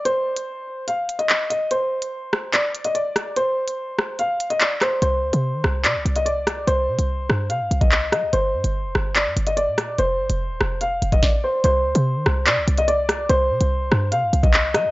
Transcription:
<<
  \new Staff \with { instrumentName = "Grand piano" } { \time 4/4 \key c \minor \tempo 4 = 145 c''2 f''8. ees''8. ees''8 | c''2 d''8. ees''16 d''4 | c''2 f''8. ees''16 d''8 c''8 | c''2 d''8. ees''16 d''4 |
c''2 f''8. ees''8. ees''8 | c''2 d''8. ees''16 d''4 | c''2 f''8. ees''16 d''8 c''8 | c''2 d''8. ees''16 d''4 |
c''2 f''8. ees''8. ees''8 | }
  \new Staff \with { instrumentName = "808-style bass" } { \clef bass \time 4/4 \key c \minor r1 | r1 | r1 | c,8 d,16 c8 ees16 c,8 c16 c,16 c,4. |
c,8 c16 c,8. g,8 c16 g,16 c,4 g16 c,16 | g,,8 g,16 g,,8 f,,16 g,,8. g,16 g,,8. bes,8. | f,,8 g,,16 f,,8 ees,,16 f,,4 f,,8 r4 | c,8 d,16 c8 ees16 c,8 c16 c,16 c,4. |
c,8 c16 c,8. g,8 c16 g,16 c,4 g16 c,16 | }
  \new DrumStaff \with { instrumentName = "Drums" } \drummode { \time 4/4 hh8. hh16 r4 hh8 hh16 hh16 <hc hh>8 hh8 | hh8. hh16 r8 ss8 <hc hh>8 hh16 hh16 hh8 <hh ss>8 | hh8. hh16 r8 ss8 hh8 hh16 hh16 <hc hh>8 <hc hh ss>8 | hh8. hh16 r8 ss8 <hc hh>8 hh16 hh16 hh8 <hh ss>8 |
hh8. hh16 r8 ss8 hh8 hh16 <hh bd>16 <hc hh>8 <hh ss>8 | hh8. hh16 r8 ss8 <hc hh>8 hh16 hh16 hh8 <hh ss>8 | hh8. hh16 r8 ss8 hh8 hh16 <hh bd>16 <hh bd sn>4 | hh8. hh16 r8 ss8 <hc hh>8 hh16 hh16 hh8 <hh ss>8 |
hh8. hh16 r8 ss8 hh8 hh16 <hh bd>16 <hc hh>8 <hh ss>8 | }
>>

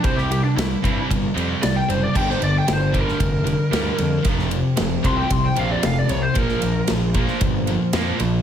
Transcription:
<<
  \new Staff \with { instrumentName = "Lead electric guitar" } { \time 4/4 \key g \minor \tempo 4 = 114 c''16 g'16 g'16 d'16 e'4 r4 d''16 g''16 c''16 d''16 | g''16 c''16 d''16 g''16 c''8 bes'2~ bes'8 | r4. c'''16 g''16 c'''16 g''16 f''16 d''16 f''16 d''16 cis''16 c''16 | bes'4 r2. | }
  \new Staff \with { instrumentName = "Analog synth pad" } { \time 4/4 \key g \minor r1 | <g d' a''>1 | <f c' g'>1 | <bes f' c''>1 | }
  \new Staff \with { instrumentName = "Distorted electric guitar" } { \clef bass \time 4/4 \key g \minor <c g c'>8 <c g>8 <c g>8 <c g c'>8 <c g>8 <c g c'>8 <c g>8 <c g>8 | <g, d g>8 <g, d>8 <g, d>8 <g, d g>8 <g, d>8 <g, d>8 <g, d g>8 <g, d>8 | <f, c f>8 <f, c>8 <f, c>8 <f, c f>8 <f, c>8 <f, c f>8 <f, c>8 <f, c>8 | <bes, f bes>8 <bes, f>8 <bes, f>8 <bes, f bes>8 <bes, f>8 <bes, f>8 <bes, f bes>8 <bes, f>8 | }
  \new Staff \with { instrumentName = "Overdriven electric guitar" } { \clef bass \time 4/4 \key g \minor <c g c'>8 <c g>8 <c g>8 <c g c'>8 <c g>8 <c g c'>8 <c g>8 <c g>8 | <g, d g>8 <g, d>8 <g, d>8 <g, d g>8 <g, d>8 <g, d>8 <g, d g>8 <g, d>8 | <f, c f>8 <f, c>8 <f, c>8 <f, c f>8 <f, c>8 <f, c f>8 <f, c>8 <f, c>8 | <bes, f bes>8 <bes, f>8 <bes, f>8 <bes, f bes>8 <bes, f>8 <bes, f>8 <bes, f bes>8 <bes, f>8 | }
  \new Staff \with { instrumentName = "Picked electric bass" } { \clef bass \time 4/4 \key g \minor c,4 c,8 g,8 g,,8 f,8 c,8 fis,,8 | g,,8 g,,8 g,,4 f,,4 d,8 f,8 | f,,4 f,,8 c,8 c,8 bes,,8 f,,8 c,8 | bes,,8 bes,,8 bes,,4 g,,4 f,8 bes,,8 | }
  \new DrumStaff \with { instrumentName = "Drums" } \drummode { \time 4/4 <bd cymr>16 sn16 cymr8 <cymr sn>8 <bd cymr>8 <bd cymr>8 cymr8 <cymr sn>8 cymr8 | <cymc bd>16 sn16 cymr8 <cymr sn>8 <bd cymr>16 sn16 <bd cymr>8 cymr8 <cymr sn>8 cymr8 | <bd cymr>16 sn16 cymr8 <cymr sn>8 <bd cymr>8 <bd cymr>8 cymr8 <cymr sn>8 cymr8 | <bd cymr>16 sn16 cymr8 <cymr sn>8 <bd cymr>16 sn16 <bd cymr>8 cymr8 <cymr sn>8 cymr8 | }
>>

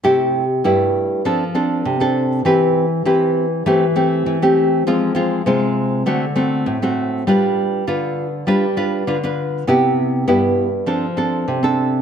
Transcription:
\new Staff \with { instrumentName = "Nylon-string guitar" } { \time 4/4 \key c \major \tempo 4 = 100 << { <a e' g'>8. r16 <a e' g'>4 <c' d' a'>16 r16 <c' d' a'>8. <c' d' a'>8. | <c' g' b'>8. r16 <c' g' b'>8. r16 <a c' g'>16 r16 <a c' g'>8. <a c' g'>8. | <aes c' f'>8 <aes c' f'>8 <aes c' f'>4 <a c' fis'>16 r16 <a c' fis'>8. <a c' fis'>8. | <d' f' b'>4 <d' f' b'>8. r16 <d' f' b'>16 r16 <d' f' b'>8 <d' f' b'>16 <d' f' b'>8. |
<b e' g'>4 <b e' g'>8. r16 <c' d' a'>16 r16 <c' d' a'>8. <c' d' a'>8. | } \\ { c4 g,4 f4 c4 | e4 e4 e4 e4 | f4 c4 d4 a,4 | g4 d4 g4 d4 |
c4 g,4 f4 c4 | } >> }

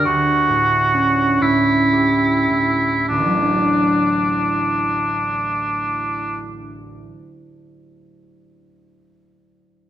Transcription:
<<
  \new Staff \with { instrumentName = "Oboe" } { \time 6/8 \key d \major \tempo 4. = 35 fis'4. e'4. | d'2.~ | d'2. | }
  \new Staff \with { instrumentName = "Harp" } { \clef bass \time 6/8 \key d \major <d, g'>8 a,8 cis'8 a,8 g'8 a,8 | <d,, a,, fis a d' fis'>2.~ | <d,, a,, fis a d' fis'>2. | }
>>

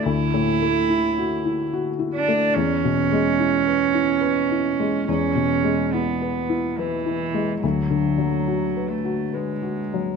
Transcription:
<<
  \new Staff \with { instrumentName = "Felt piano" } { \time 3/4 \key e \mixolydian \tempo 4 = 71 \tuplet 3/2 { <d, a>8 a,8 a8 e'8 fis'8 e'8 fis'8 e'8 a8 } | \tuplet 3/2 { e,8 b,8 gis8 e'8 b'8 e'8 b'8 e'8 gis8 } | \tuplet 3/2 { e,8 b,8 gis8 e'8 b'8 e'8 b'8 e'8 gis8 } | \tuplet 3/2 { d,8 d8 fis8 fis'8 b'8 fis'8 b'8 fis'8 fis8 } | }
  \new Staff \with { instrumentName = "Cello" } { \time 3/4 \key e \mixolydian e'2 r8 d'8 | cis'2. | cis'4 b4 e4 | fis4. a8 gis4 | }
>>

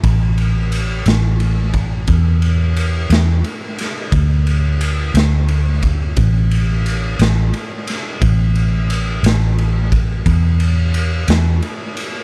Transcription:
<<
  \new Staff \with { instrumentName = "Fingered electric bass" } { \clef bass \time 12/8 \key d \dorian \tempo 4. = 59 a,,4. a,,4. e,4. e,8 r4 | d,4. d,4. a,,4. a,,8 r4 | a,,4. a,,4. e,4. e,8 r4 | }
  \new DrumStaff \with { instrumentName = "Drums" } \drummode { \time 12/8 <bd cymr>8 cymr8 cymr8 <cymr sn>8 cymr8 <bd cymr>8 <bd cymr>8 cymr8 cymr8 <cymr sn>8 cymr8 <cymr sn>8 | <bd cymr>8 cymr8 cymr8 <cymr sn>8 cymr8 <bd cymr>8 <bd cymr>8 cymr8 cymr8 <cymr sn>8 cymr8 <cymr sn>8 | <bd cymr>8 cymr8 cymr8 <cymr sn>8 cymr8 <bd cymr>8 <bd cymr>8 cymr8 cymr8 <cymr sn>8 cymr8 cymr8 | }
>>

